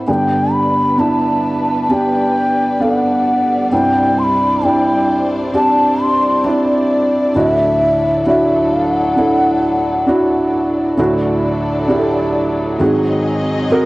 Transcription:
0.00 0.10 E4 medium
0.00 0.10 A4 medium
0.07 3.68 G2 medium
0.07 3.68 D3 medium
0.07 7.32 G3 medium
0.07 0.94 B3 medium
0.07 3.69 B3 medium
0.07 0.94 D4 soft
0.07 10.96 D4 medium
0.07 0.95 G4 medium
0.07 3.69 B4 medium
0.07 10.95 D5 medium
0.07 0.55 G5 medium
0.07 0.12 G#5 medium
0.53 1.01 B5 medium
0.97 1.84 B3 medium
0.97 1.85 D4 medium
0.97 1.85 E4 medium
0.97 1.92 A5 medium
1.89 2.76 B3 medium
1.89 2.76 D4 medium
1.89 2.77 G4 medium
1.89 1.95 G#5 medium
1.94 2.83 G5 medium
2.80 3.66 B3 medium
2.80 3.67 D4 medium
2.80 3.67 A4 medium
2.80 2.95 F5 medium
2.95 3.71 F#5 medium
3.72 7.32 C2 medium
3.72 7.32 G2 medium
3.72 4.58 C4 medium
3.72 4.58 D4 medium
3.72 10.95 E4 medium
3.72 4.59 E4 medium
3.72 7.32 C5 medium
3.72 4.20 G5 loud
4.19 4.24 C6 medium
4.23 4.67 B5 medium
4.63 5.49 C4 medium
4.63 5.49 D4 medium
4.63 5.50 E4 medium
4.63 5.28 G5 medium
5.53 6.40 C4 medium
5.53 6.40 D4 medium
5.53 6.40 G4 medium
5.53 6.03 A5 medium
6.02 6.46 C6 medium
6.44 7.30 C4 medium
6.44 7.31 D4 medium
6.44 7.31 E4 medium
6.48 7.39 D5 medium
7.35 10.95 D2 medium
7.35 10.95 A2 medium
7.35 10.95 F#3 medium
7.35 8.21 D4 medium
7.35 8.22 E4 medium
7.35 8.22 F#4 medium
7.35 10.95 A4 medium
7.35 8.27 E5 loud
8.26 9.12 D4 medium
8.26 9.13 E4 medium
8.26 9.13 F#4 medium
8.26 8.75 E5 medium
8.74 8.90 F5 medium
8.90 10.54 F#5 medium
9.16 10.03 D4 medium
9.16 10.04 E4 medium
9.16 10.04 A4 medium
10.07 10.94 D4 medium
10.07 10.94 E4 medium
10.07 10.95 F#4 medium
10.97 12.76 D2 medium
10.97 12.76 A2 medium
10.97 13.85 F#3 medium
10.97 11.84 D4 medium
10.97 12.79 D4 medium
10.97 11.85 E4 medium
10.97 12.79 E4 medium
10.97 11.85 F#4 medium
10.97 12.79 A4 medium
10.97 12.79 D5 medium
11.88 12.75 D4 medium
11.88 12.76 E4 medium
11.88 11.96 G4 medium
11.96 12.79 A4 medium
12.79 13.85 G#2 medium
12.79 13.85 D#3 medium
12.79 13.66 C4 medium
12.79 13.85 C4 medium
12.79 13.85 D#4 medium
12.79 13.67 F#4 medium
12.79 13.67 G#4 medium
12.79 13.85 G#4 medium
12.79 13.85 D#5 medium
13.70 13.85 C4 medium
13.70 13.85 F#4 medium
13.70 13.85 A#4 medium

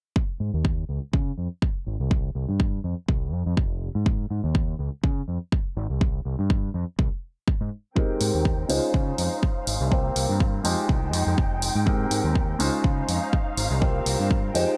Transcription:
0.16 kick loud
0.40 0.49 G#2 medium
0.54 0.83 D#2 medium
0.65 kick loud
0.89 0.98 C#2 medium
1.13 1.30 C#3 loud
1.13 kick loud
1.38 1.47 F2 medium
1.62 kick loud
1.86 1.96 G#1 medium
2.00 2.29 C2 medium
2.11 kick loud
2.35 2.44 C2 medium
2.49 2.78 G2 medium
2.60 kick loud
2.84 2.93 F2 medium
3.08 3.33 C2 medium
3.08 kick loud
3.33 3.42 F2 medium
3.46 3.54 F2 medium
3.57 3.88 F1 medium
3.57 kick loud
3.95 4.25 G#2 medium
4.06 kick loud
4.30 4.39 G#2 medium
4.44 4.73 D#2 medium
4.55 kick loud
4.79 4.88 C#2 medium
5.04 5.21 C#3 medium
5.04 kick loud
5.28 5.37 F2 medium
5.52 kick loud
5.77 5.86 G#1 medium
5.90 6.20 C2 medium
6.01 kick loud
6.25 6.34 C2 medium
6.39 6.68 G2 medium
6.50 kick loud
6.74 6.83 F2 medium
6.99 7.08 C2 medium
6.99 kick loud
7.48 kick loud
7.61 7.68 G#2 medium
7.95 8.65 G#3 medium
7.95 8.65 C4 medium
7.95 8.69 C4 medium
7.95 8.65 D#4 medium
7.95 8.65 G4 medium
7.95 8.69 A#4 medium
7.95 8.66 A#4 medium
7.95 8.69 G5 medium
7.95 kick loud
8.21 8.30 G#2 medium
8.21 open hi-hat loud
8.34 8.64 D#2 medium
8.45 kick loud
8.69 8.79 C#2 medium
8.69 9.87 G#3 medium
8.69 9.87 C#4 medium
8.69 9.87 D#4 medium
8.69 9.90 D#4 medium
8.69 9.87 F4 medium
8.69 9.90 C5 medium
8.69 9.87 C5 medium
8.69 10.63 F5 medium
8.69 open hi-hat loud
8.94 9.11 C#3 loud
8.94 kick loud
9.18 9.27 F2 medium
9.18 open hi-hat medium
9.43 kick loud
9.67 9.76 G#1 loud
9.67 open hi-hat loud
9.81 10.10 C2 medium
9.91 10.60 A#3 medium
9.91 10.60 C4 medium
9.91 10.64 C4 medium
9.91 10.60 F4 medium
9.91 10.61 G4 medium
9.91 10.64 A#4 medium
9.91 10.61 C5 medium
9.91 kick loud
10.16 10.25 C2 medium
10.16 open hi-hat loud
10.29 10.59 G2 medium
10.40 kick loud
10.63 10.74 F2 medium
10.63 11.82 G#3 medium
10.63 11.85 G#3 medium
10.63 11.82 D#4 medium
10.63 11.85 D#4 medium
10.63 11.82 F4 medium
10.63 11.82 G4 medium
10.63 11.82 C5 medium
10.63 12.58 G5 medium
10.63 open hi-hat loud
10.89 11.13 C2 medium
10.89 kick loud
11.13 11.22 F2 medium
11.13 open hi-hat loud
11.27 11.34 F2 medium
11.38 11.69 F1 medium
11.38 kick loud
11.62 open hi-hat loud
11.75 12.05 G#2 medium
11.86 12.55 G#3 medium
11.86 12.55 C4 medium
11.86 12.59 C4 medium
11.86 12.55 D#4 medium
11.86 12.56 G4 medium
11.86 12.59 A#4 medium
11.86 12.56 A#4 medium
11.86 kick loud
12.11 12.20 G#2 medium
12.11 open hi-hat loud
12.24 12.54 D#2 medium
12.35 kick loud
12.59 12.69 C#2 medium
12.59 13.77 G#3 medium
12.59 13.77 C#4 medium
12.59 13.80 D#4 medium
12.59 13.77 D#4 medium
12.59 13.78 F4 medium
12.59 13.80 C5 medium
12.59 13.78 C5 medium
12.59 14.53 F5 medium
12.59 open hi-hat loud
12.84 13.01 C#3 loud
12.84 kick loud
13.08 13.17 F2 medium
13.08 open hi-hat medium
13.33 kick loud
13.57 13.66 G#1 medium
13.57 open hi-hat medium
13.71 14.00 C2 loud
13.81 14.50 A#3 medium
13.81 14.50 C4 medium
13.81 14.54 C4 medium
13.81 14.50 F4 medium
13.81 14.51 G4 medium
13.81 14.54 A#4 medium
13.81 14.51 C5 medium
13.81 kick loud
14.06 14.15 C2 medium
14.06 open hi-hat loud
14.19 14.49 G2 medium
14.31 kick loud
14.54 14.64 F2 medium
14.54 14.77 G#3 medium
14.54 14.77 D#4 medium
14.54 14.77 F4 medium
14.54 14.77 G4 medium
14.54 14.77 C5 medium
14.54 14.77 G5 medium
14.54 open hi-hat loud

